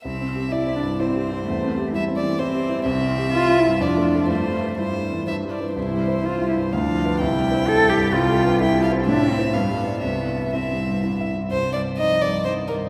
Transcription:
<<
  \new Staff \with { instrumentName = "Violin" } { \time 3/4 \key c \major \tempo 4 = 126 e''4 d''4 c''4~ | c''4 e''8 d''8 c''4 | e''2 d''4 | c''4 c''4 e''8 d''8 |
c''2 f''4 | g''2 g''4 | g''8 f''8 e''4 f''4 | e''4 e''4. r8 |
\key c \minor c''8 d''8 ees''8 d''8 c''8 bes'8 | }
  \new Staff \with { instrumentName = "Cello" } { \time 3/4 \key c \major c'4 e'8 d'8 c'4 | a4 g4 c'4 | c'4 f'8 e'8 d'4 | a4 g4 r4 |
e'4 f'8 e'8 d'4 | e'4 a'8 g'8 f'4 | e'4 d'8 c'8 b8 b8 | b4 c'4 r4 |
\key c \minor g4 f4 ees4 | }
  \new Staff \with { instrumentName = "Grand piano" } { \time 3/4 \key c \major \tuplet 3/2 { c,8 c'8 g'8 e'8 c'8 g,8 e'8 g'8 e'8 } | \tuplet 3/2 { e,8 c'8 g'8 e'8 c'8 e8 e'8 g'8 e'8 } | \tuplet 3/2 { c,8 c'8 g'8 e'8 c'8 g,8 f,8 a8 <f' a'>8 } | \tuplet 3/2 { g,8 g8 c''8 e'8 g8 e8 g,8 g8 <d' b'>8 } |
\tuplet 3/2 { c,8 g8 c''8 e'8 g8 g,8 d,8 f8 <f' b'>8 } | \tuplet 3/2 { c,8 g8 c''8 e'8 g8 g,8 c,8 g8 <d' b'>8 } | \tuplet 3/2 { c,8 g8 <e' c''>8 a,8 c'8 <e' c''>8 g,8 g8 <f' d''>8 } | \tuplet 3/2 { c,8 g8 e''8 e'8 g8 g,8 e'8 e''8 e'8 } |
\key c \minor c,8 g,8 ees'8 g,8 ees'8 g,8 | }
>>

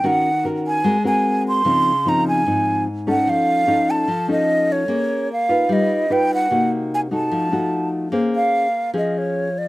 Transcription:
<<
  \new Staff \with { instrumentName = "Flute" } { \time 4/4 \key bes \minor \tempo 4 = 148 ges''4 r8 aes''4 aes''4 c'''8~ | c'''4 bes''8 aes''4. r8 ges''8 | f''4. a''4 ees''4 cis''8~ | cis''4 f''4 dis''4 g''8 ges''8~ |
ges''8 r8 aes''8 a''2 r8 | r8 f''4. ees''8 des''4 d''8 | }
  \new Staff \with { instrumentName = "Nylon-string guitar" } { \time 4/4 \key bes \minor << { <des' ges' bes'>8 r8 <des' ges' bes'>4 <c' ges' bes'>8 <c' ges' bes'>4. | <f c' ees'>8 r8 <f c' ees'>4 <f c' ees'>4 r8 <des' ees' a'>8~ | <des' ees' a'>4 <cis' ees' a'>4 r8 <cis' ees' a'>4. | <des' aes'>4 r8 <ees' f' ces''>4. <dis' f' b'>4 |
<bes ees' ges'>4. <a ees' ges'>4 <a ees' ges'>4. | <des' aes' c''>4. r8 <des' aes'>4. r8 | } \\ { ees2 aes2 | des2 aes,2 | f2 f2 | bes2 g2 |
c2 f2 | bes2 f2 | } >> }
>>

